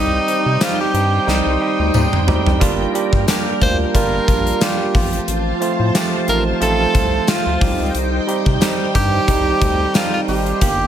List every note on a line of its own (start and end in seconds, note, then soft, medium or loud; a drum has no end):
0.00 0.20 C2 loud
0.00 0.27 G3 loud
0.00 0.27 C4 medium
0.00 0.28 D#4 medium
0.00 0.64 D#4 loud
0.00 2.58 D#4 medium
0.00 0.28 G4 loud
0.00 2.57 C5 medium
0.00 4.91 G5 medium
0.27 0.55 G3 medium
0.27 0.56 C4 medium
0.27 0.56 D#4 medium
0.27 0.56 G4 medium
0.27 closed hi-hat medium
0.46 0.57 C3 loud
0.60 0.89 G3 medium
0.60 0.89 C4 medium
0.60 0.89 D#4 medium
0.60 0.80 F4 medium
0.60 0.89 G4 medium
0.60 snare loud
0.60 closed hi-hat loud
0.60 tambourine medium
0.81 1.25 G4 loud
0.94 1.19 G2 medium
0.94 1.22 G3 medium
0.94 1.22 C4 medium
0.94 1.22 D#4 medium
0.94 1.23 G4 medium
0.94 closed hi-hat medium
1.27 1.41 C2 loud
1.27 1.55 G3 medium
1.27 1.56 C4 medium
1.27 1.56 D#4 medium
1.27 2.25 D#4 medium
1.27 1.56 G4 loud
1.27 snare medium
1.46 1.57 C2 medium
1.60 1.89 G3 medium
1.60 1.89 C4 medium
1.60 1.89 D#4 medium
1.60 1.89 G4 medium
1.79 1.91 D2 medium
1.94 2.08 D#2 medium
1.94 2.22 G3 medium
1.94 2.22 C4 medium
1.94 2.23 D#4 medium
1.94 2.23 G4 medium
1.94 mid tom medium
1.94 tambourine medium
2.13 mid tom medium
2.27 2.41 D2 medium
2.27 2.55 G3 medium
2.27 2.56 C4 medium
2.27 2.56 D#4 medium
2.27 2.56 G4 medium
2.27 floor tom loud
2.46 2.57 C2 medium
2.46 floor tom medium
2.60 2.86 G1 loud
2.60 2.89 G3 loud
2.60 2.89 A#3 loud
2.60 2.89 D4 loud
2.60 2.89 F4 loud
2.60 7.57 F4 medium
2.60 4.92 A#4 medium
2.60 kick loud
2.60 closed hi-hat medium
2.94 3.22 G3 medium
2.94 3.22 A#3 medium
2.94 3.23 D4 medium
2.94 3.23 G4 loud
2.94 closed hi-hat medium
3.13 3.24 G2 loud
3.13 kick medium
3.27 3.55 G3 medium
3.27 3.56 A#3 medium
3.27 3.56 D4 medium
3.27 3.56 G4 loud
3.27 snare loud
3.27 closed hi-hat loud
3.27 tambourine medium
3.61 3.86 D2 loud
3.61 3.89 G3 medium
3.61 3.89 A#3 medium
3.61 3.89 D4 medium
3.61 3.89 F4 medium
3.61 3.77 C5 loud
3.61 kick medium
3.61 closed hi-hat medium
3.94 4.20 G1 loud
3.94 4.22 G3 medium
3.94 4.22 A#3 medium
3.94 4.23 D4 medium
3.94 4.23 F4 loud
3.94 4.64 A#4 loud
3.94 kick medium
3.94 closed hi-hat medium
4.27 4.53 A#1 medium
4.27 4.55 G3 medium
4.27 4.56 A#3 medium
4.27 4.56 D4 medium
4.27 4.56 F4 medium
4.27 kick loud
4.27 closed hi-hat medium
4.47 closed hi-hat medium
4.61 4.89 G3 medium
4.61 4.89 A#3 medium
4.61 4.89 D4 medium
4.61 4.89 F4 medium
4.61 5.29 G4 medium
4.61 snare loud
4.61 closed hi-hat loud
4.61 tambourine medium
4.94 5.20 A1 loud
4.94 5.50 F3 medium
4.94 5.50 A3 medium
4.94 5.50 C4 medium
4.94 5.51 F4 medium
4.94 10.58 C5 medium
4.94 7.59 A5 medium
4.94 kick loud
4.94 open hi-hat medium
5.13 closed hi-hat soft
5.28 5.53 A1 loud
5.28 closed hi-hat medium
5.61 5.89 F3 medium
5.61 5.89 A3 medium
5.61 5.89 C4 medium
5.61 5.89 F4 loud
5.61 closed hi-hat medium
5.79 5.91 A2 loud
5.94 6.22 F3 medium
5.94 6.23 A3 medium
5.94 6.23 C4 medium
5.94 6.23 G4 loud
5.94 snare loud
5.94 closed hi-hat loud
5.94 tambourine medium
6.27 6.53 A1 medium
6.27 6.55 F3 medium
6.27 6.56 A3 medium
6.27 6.56 C4 medium
6.27 6.56 D#4 medium
6.27 6.44 A#4 loud
6.27 closed hi-hat medium
6.61 6.86 A1 medium
6.61 6.89 F3 medium
6.61 6.89 A3 medium
6.61 6.89 C4 medium
6.61 6.89 F4 loud
6.61 7.31 A4 loud
6.61 closed hi-hat medium
6.94 7.20 C2 medium
6.94 7.22 F3 medium
6.94 7.23 A3 medium
6.94 7.23 C4 medium
6.94 7.23 F4 medium
6.94 kick loud
6.94 closed hi-hat medium
7.27 7.56 F3 medium
7.27 7.56 A3 medium
7.27 7.56 C4 medium
7.27 7.56 F4 medium
7.27 7.95 F4 medium
7.27 snare loud
7.27 closed hi-hat medium
7.27 tambourine medium
7.46 7.58 D2 medium
7.60 7.75 C2 loud
7.60 8.17 G3 medium
7.60 8.17 C4 medium
7.60 10.58 D#4 medium
7.60 8.17 D#4 medium
7.60 8.17 G4 medium
7.60 10.87 G5 medium
7.60 kick loud
7.60 open hi-hat medium
7.79 7.91 C#2 medium
7.95 8.20 C2 loud
7.95 closed hi-hat medium
8.27 8.55 G3 medium
8.27 8.56 C4 medium
8.27 8.56 D#4 medium
8.27 8.56 G4 medium
8.27 closed hi-hat medium
8.46 8.57 C3 medium
8.46 kick loud
8.61 8.89 G3 medium
8.61 8.89 C4 medium
8.61 8.89 D#4 medium
8.61 8.89 G4 loud
8.61 snare loud
8.61 closed hi-hat loud
8.61 tambourine medium
8.94 9.20 G2 medium
8.94 9.22 G3 medium
8.94 9.22 C4 medium
8.94 9.23 D#4 medium
8.94 9.23 G4 medium
8.94 9.96 G4 loud
8.94 kick medium
8.94 closed hi-hat medium
9.27 9.53 C2 loud
9.27 9.55 G3 medium
9.27 9.56 C4 medium
9.27 9.56 D#4 medium
9.27 9.56 G4 loud
9.27 kick medium
9.27 closed hi-hat medium
9.61 9.86 D2 loud
9.61 9.89 G3 medium
9.61 9.89 C4 medium
9.61 9.89 D#4 medium
9.61 9.90 A4 medium
9.61 kick loud
9.61 closed hi-hat medium
9.94 10.22 G3 medium
9.94 10.23 C4 medium
9.94 10.23 D#4 medium
9.94 10.13 F4 loud
9.94 10.23 A4 medium
9.94 snare loud
9.94 closed hi-hat loud
9.94 tambourine medium
10.14 10.20 F4 medium
10.28 10.53 G#1 medium
10.28 10.56 G3 medium
10.28 10.56 C4 medium
10.28 10.56 D#4 medium
10.28 10.87 G4 loud
10.28 10.56 G4 medium
10.28 open hi-hat medium
10.46 closed hi-hat soft
10.61 10.86 G1 loud
10.61 10.87 A#3 loud
10.61 10.87 D4 medium
10.61 10.87 F4 medium
10.61 10.87 G4 loud
10.61 10.87 A#4 medium
10.61 kick loud
10.61 closed hi-hat medium